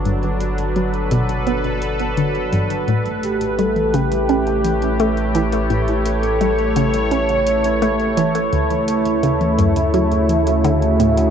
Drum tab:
HH |xxxxxxxxxxxxxxxx|xxxxxxxxxxxxxxxx|xxxxxxxxxxxxxxxx|xxxxxxxxxxxxxxxx|
T1 |--------------o-|-----o----o-----|----------------|-----o----o-----|